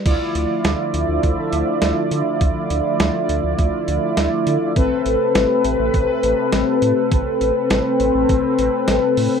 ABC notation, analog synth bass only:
X:1
M:4/4
L:1/16
Q:1/4=102
K:Ddor
V:1 name="Analog synth bass" clef=bass
D,, z D,, z D,, z D,, D,, D,, z D,, z D,, z D, z | D,, z D,, z D,, z D,, D,, D,, z D,, z D,, z D, z | A,,, z A,,, z A,,, z A,,, A,,, A,,, z A,,, z A,,, z A,, z | A,,, z A,,, z A,,, z A,,, A,,, A,,, z A,,, z A,,, z A,, z |]